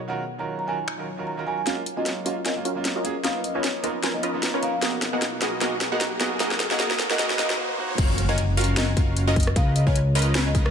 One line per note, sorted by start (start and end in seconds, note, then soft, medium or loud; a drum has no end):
0.08 0.21 D#3 medium
0.08 1.65 F#3 medium
0.08 0.22 C#4 medium
0.08 1.65 D#4 medium
0.08 0.22 F4 medium
0.08 1.65 F4 medium
0.08 0.22 F#4 medium
0.08 0.22 A#4 loud
0.08 1.65 C#5 medium
0.08 0.20 F#5 medium
0.38 0.65 D#3 medium
0.38 0.65 C#4 medium
0.38 0.66 F4 medium
0.38 0.66 F#4 medium
0.38 0.66 A#4 medium
0.38 0.49 A#5 medium
0.59 0.66 A#5 medium
0.67 0.76 D#3 medium
0.67 0.76 C#4 medium
0.67 0.76 F4 medium
0.67 0.77 F#4 medium
0.67 0.77 A#4 medium
0.67 0.79 G#5 medium
0.88 finger snap medium
0.98 1.05 D#3 medium
0.98 1.05 C#4 medium
0.98 1.05 F4 medium
0.98 1.06 F#4 medium
0.98 1.06 A#4 medium
1.17 1.35 D#3 medium
1.17 1.35 C#4 medium
1.17 1.35 F4 medium
1.17 1.36 F#4 medium
1.17 1.36 A#4 medium
1.27 1.38 A#5 medium
1.37 1.44 D#3 medium
1.37 1.45 C#4 medium
1.37 1.45 F4 medium
1.37 1.46 F#4 medium
1.37 1.46 A#4 medium
1.46 1.59 D#3 medium
1.46 1.60 C#4 medium
1.46 1.60 F4 medium
1.46 1.60 F#4 medium
1.46 1.60 A#4 medium
1.46 1.54 G#5 medium
1.58 1.63 G#5 medium
1.65 3.23 F#3 medium
1.65 1.79 G#3 medium
1.65 1.79 A#3 medium
1.65 4.79 C#4 medium
1.65 1.95 C#4 medium
1.65 1.80 C#4 medium
1.65 3.23 F4 medium
1.65 1.95 F4 medium
1.65 1.80 F4 loud
1.65 1.95 F#4 medium
1.65 6.36 A#4 medium
1.65 1.95 A#4 medium
1.65 1.95 F5 medium
1.65 snare soft
1.65 closed hi-hat medium
1.65 riser medium
1.86 closed hi-hat medium
1.96 2.23 G#3 medium
1.96 2.23 A#3 medium
1.96 2.09 C#4 medium
1.96 2.24 C#4 medium
1.96 2.09 F4 medium
1.96 2.24 F4 medium
1.96 2.09 F#4 medium
1.96 2.09 A#4 medium
1.96 2.26 D#5 medium
1.96 2.09 G#5 medium
2.06 snare soft
2.06 closed hi-hat medium
2.25 2.34 G#3 medium
2.25 2.34 A#3 medium
2.25 2.43 C#4 medium
2.25 2.34 C#4 medium
2.25 2.43 F4 medium
2.25 2.35 F4 medium
2.25 2.43 F#4 medium
2.25 2.43 A#4 medium
2.25 2.43 F5 medium
2.25 closed hi-hat medium
2.45 2.59 C#4 medium
2.45 2.59 F4 medium
2.45 2.59 F#4 medium
2.45 2.59 A#4 medium
2.45 2.57 D#5 medium
2.45 2.59 G#5 medium
2.45 snare medium
2.45 closed hi-hat medium
2.55 2.63 G#3 medium
2.55 2.63 A#3 medium
2.55 2.63 C#4 medium
2.55 2.64 F4 medium
2.65 2.93 C#4 medium
2.65 2.93 F4 medium
2.65 2.93 F#4 medium
2.65 2.93 A#4 medium
2.65 2.93 F5 loud
2.65 closed hi-hat medium
2.75 3.02 G#3 medium
2.75 3.02 A#3 medium
2.75 3.03 C#4 medium
2.75 3.03 F4 medium
2.85 snare medium
2.85 closed hi-hat medium
2.96 3.17 C#4 medium
2.96 3.17 F4 medium
2.96 3.17 F#4 medium
2.96 3.17 A#4 medium
2.96 3.05 D#5 medium
2.96 3.17 D#5 medium
3.04 3.13 G#3 medium
3.04 3.13 A#3 medium
3.04 3.13 C#4 medium
3.04 3.14 G#4 loud
3.04 closed hi-hat medium
3.23 4.81 F3 medium
3.23 3.37 A#3 medium
3.23 3.37 B3 medium
3.23 6.37 B3 medium
3.23 3.52 C#4 medium
3.23 4.81 D#4 medium
3.23 3.38 D#4 medium
3.23 3.52 F4 medium
3.23 3.38 F4 loud
3.23 3.52 A#4 medium
3.23 3.52 B4 medium
3.23 3.52 D#5 medium
3.23 3.36 F5 medium
3.23 snare medium
3.23 closed hi-hat medium
3.44 3.53 D#5 medium
3.44 closed hi-hat medium
3.54 3.81 A#3 medium
3.54 3.81 B3 medium
3.54 3.67 C#4 medium
3.54 3.82 D#4 medium
3.54 3.67 F4 medium
3.54 3.82 F4 medium
3.54 3.67 A#4 medium
3.54 3.67 B4 medium
3.54 3.64 C#5 medium
3.54 3.67 G#5 medium
3.64 snare medium
3.64 closed hi-hat medium
3.83 3.92 A#3 medium
3.83 3.92 B3 medium
3.83 4.01 C#4 medium
3.83 3.92 D#4 medium
3.83 4.01 F4 medium
3.83 3.93 F4 loud
3.83 4.01 A#4 medium
3.83 4.01 B4 medium
3.83 4.01 D#5 medium
3.83 closed hi-hat medium
4.03 4.17 C#4 medium
4.03 4.17 F4 medium
4.03 4.17 A#4 medium
4.03 4.17 B4 medium
4.03 4.17 G#5 medium
4.03 snare medium
4.03 closed hi-hat medium
4.13 4.21 A#3 medium
4.13 4.21 B3 medium
4.13 4.21 D#4 medium
4.13 4.22 F4 medium
4.13 4.24 D#5 medium
4.23 4.51 C#4 loud
4.23 4.51 F4 medium
4.23 4.51 A#4 medium
4.23 4.51 B4 medium
4.23 4.51 D#5 loud
4.23 closed hi-hat medium
4.33 4.60 A#3 medium
4.33 4.60 B3 medium
4.33 4.61 D#4 medium
4.33 4.61 F4 medium
4.43 snare medium
4.43 closed hi-hat medium
4.54 4.74 C#4 medium
4.54 4.74 F4 medium
4.54 4.74 A#4 medium
4.54 4.74 B4 medium
4.54 4.74 C#5 loud
4.62 4.71 A#3 medium
4.62 4.71 B3 medium
4.62 4.71 D#4 medium
4.62 4.72 A#4 loud
4.62 4.70 F5 medium
4.62 closed hi-hat medium
4.73 4.79 F5 medium
4.81 6.39 B2 medium
4.81 7.56 F#3 medium
4.81 4.95 A#3 medium
4.81 4.95 B3 medium
4.81 5.10 B3 medium
4.81 4.96 D#4 medium
4.81 5.10 F#4 medium
4.81 4.96 F#4 medium
4.81 6.39 G#4 medium
4.81 5.10 G#4 medium
4.81 5.10 A#4 medium
4.81 5.10 D#5 medium
4.81 snare medium
4.81 closed hi-hat medium
5.02 snare medium
5.02 closed hi-hat medium
5.12 5.39 A#3 medium
5.12 5.39 B3 medium
5.12 5.25 B3 medium
5.12 5.40 D#4 medium
5.12 5.25 F#4 medium
5.12 5.40 F#4 medium
5.12 5.25 G#4 medium
5.12 5.25 A#4 medium
5.12 5.41 D#5 medium
5.12 5.25 F#5 medium
5.22 snare medium
5.22 closed hi-hat medium
5.40 5.49 A#3 medium
5.40 5.50 B3 medium
5.40 5.59 B3 medium
5.40 5.50 D#4 medium
5.40 5.59 F#4 medium
5.40 5.50 F#4 medium
5.40 5.59 G#4 medium
5.40 5.59 A#4 medium
5.40 5.59 D#5 medium
5.40 snare medium
5.40 closed hi-hat medium
5.60 5.74 A#3 medium
5.60 5.74 B3 medium
5.60 5.89 B3 medium
5.60 5.74 D#4 medium
5.60 5.89 F#4 medium
5.60 5.75 F#4 loud
5.60 5.89 G#4 medium
5.60 5.89 A#4 medium
5.60 5.89 D#5 loud
5.60 snare medium
5.60 closed hi-hat medium
5.81 snare medium
5.81 closed hi-hat medium
5.91 6.18 A#3 medium
5.91 6.18 B3 medium
5.91 6.04 B3 medium
5.91 6.18 D#4 medium
5.91 6.04 F#4 medium
5.91 6.19 F#4 medium
5.91 6.04 G#4 medium
5.91 6.04 A#4 medium
5.91 6.20 D#5 medium
5.91 6.04 F#5 medium
6.01 snare medium
6.01 closed hi-hat medium
6.19 6.28 A#3 medium
6.19 6.29 B3 medium
6.19 6.38 B3 medium
6.19 6.29 D#4 medium
6.19 6.38 F#4 medium
6.19 6.29 F#4 loud
6.19 6.38 G#4 medium
6.19 6.38 A#4 medium
6.19 6.38 D#5 medium
6.19 snare medium
6.19 closed hi-hat medium
6.39 6.53 A#3 medium
6.39 6.68 A#3 medium
6.39 7.57 D#4 medium
6.39 6.54 D#4 medium
6.39 7.57 F4 medium
6.39 6.68 F#4 medium
6.39 6.54 F#4 loud
6.39 6.68 G#4 medium
6.39 6.68 A#4 medium
6.39 7.57 C#5 medium
6.39 6.68 D#5 medium
6.39 snare medium
6.39 closed hi-hat medium
6.51 snare medium
6.60 snare medium
6.60 closed hi-hat medium
6.70 6.77 A#3 medium
6.70 6.78 A#3 medium
6.70 6.78 D#4 medium
6.70 6.78 F#4 medium
6.70 6.79 F#4 medium
6.70 6.78 G#4 medium
6.70 6.78 A#4 medium
6.70 6.78 D#5 medium
6.70 6.78 F#5 medium
6.70 snare medium
6.79 6.92 A#3 loud
6.79 7.08 A#3 medium
6.79 6.93 D#4 medium
6.79 7.08 F#4 medium
6.79 6.93 F#4 loud
6.79 7.08 G#4 medium
6.79 7.08 A#4 medium
6.79 7.08 D#5 loud
6.79 snare loud
6.79 closed hi-hat medium
6.91 snare medium
6.99 snare loud
6.99 closed hi-hat medium
7.09 7.17 A#3 medium
7.09 7.18 A#3 medium
7.09 7.18 D#4 medium
7.09 7.18 F#4 medium
7.09 7.18 G#4 medium
7.09 7.18 A#4 medium
7.09 7.18 D#5 medium
7.09 7.18 F#5 medium
7.09 snare medium
7.18 7.32 A#3 loud
7.18 7.38 A#3 loud
7.18 7.32 D#4 medium
7.18 7.38 F#4 medium
7.18 7.33 F#4 loud
7.18 7.38 G#4 medium
7.18 7.38 A#4 medium
7.18 7.37 D#5 medium
7.18 7.38 D#5 loud
7.18 snare loud
7.18 closed hi-hat medium
7.30 snare medium
7.38 7.52 A#3 loud
7.38 7.57 A#3 medium
7.38 7.52 D#4 medium
7.38 7.57 F#4 medium
7.38 7.52 F#4 loud
7.38 7.57 G#4 medium
7.38 7.57 A#4 medium
7.38 7.57 D#5 loud
7.38 snare loud
7.38 closed hi-hat medium
7.50 snare medium
7.58 7.71 A#3 loud
7.58 7.72 D#4 medium
7.58 7.72 F#4 loud
7.77 7.91 A#3 loud
7.77 7.92 D#4 medium
7.77 7.92 F#4 loud
7.98 9.54 F#1 medium
7.98 8.26 C#4 medium
7.98 8.26 F4 medium
7.98 8.26 F#4 medium
7.98 8.26 A#4 medium
7.98 8.26 F5 loud
7.98 kick loud
7.98 closed hi-hat medium
7.98 crash loud
7.98 impact medium
8.18 closed hi-hat medium
8.29 8.41 C#4 medium
8.29 8.41 F4 medium
8.29 8.41 F#4 medium
8.29 8.41 A#4 medium
8.29 8.57 D#5 loud
8.29 8.41 G#5 medium
8.38 closed hi-hat medium
8.57 8.75 C#4 medium
8.57 8.75 F4 medium
8.57 8.75 F#4 medium
8.57 8.75 A#4 medium
8.57 8.75 F5 medium
8.57 closed hi-hat medium
8.57 open hi-hat medium
8.64 closed hi-hat medium
8.77 8.91 C#4 medium
8.77 8.91 F4 medium
8.77 8.91 F#4 medium
8.77 8.91 A#4 medium
8.77 8.88 D#5 medium
8.77 8.91 G#5 medium
8.77 snare loud
8.77 closed hi-hat medium
8.97 9.25 C#4 loud
8.97 9.25 F4 medium
8.97 9.25 F#4 medium
8.97 9.25 A#4 medium
8.97 9.25 F5 loud
8.97 kick loud
8.97 closed hi-hat medium
9.17 closed hi-hat medium
9.27 9.48 C#4 medium
9.27 9.48 F4 medium
9.27 9.48 F#4 medium
9.27 9.48 A#4 medium
9.27 9.48 D#5 loud
9.27 9.37 D#5 medium
9.36 kick loud
9.36 closed hi-hat soft
9.40 closed hi-hat medium
9.43 closed hi-hat medium
9.47 cross-stick medium
9.56 10.71 C#2 medium
9.56 9.84 C#4 medium
9.56 9.84 F4 medium
9.56 9.84 A#4 medium
9.56 9.84 B4 medium
9.56 9.84 D#5 loud
9.56 9.67 F5 medium
9.56 kick loud
9.56 closed hi-hat medium
9.76 9.85 D#5 medium
9.76 closed hi-hat medium
9.87 9.99 C#4 medium
9.87 9.99 F4 medium
9.87 9.99 A#4 medium
9.87 9.99 B4 medium
9.87 9.96 C#5 loud
9.87 9.99 G#5 medium
9.87 kick medium
9.96 closed hi-hat medium
10.15 10.33 C#4 medium
10.15 10.33 F4 medium
10.15 10.33 A#4 medium
10.15 10.33 B4 medium
10.15 10.33 D#5 medium
10.15 closed hi-hat medium
10.15 open hi-hat medium
10.22 closed hi-hat medium
10.35 10.49 C#4 medium
10.35 10.49 F4 medium
10.35 10.49 A#4 medium
10.35 10.49 B4 medium
10.35 10.49 G#5 medium
10.35 snare loud
10.35 closed hi-hat medium
10.46 10.55 D#5 medium
10.55 10.71 C#4 loud
10.55 10.71 F4 medium
10.55 10.71 A#4 medium
10.55 10.71 B4 medium
10.55 10.71 D#5 loud
10.55 kick loud
10.55 closed hi-hat medium
10.66 cross-stick medium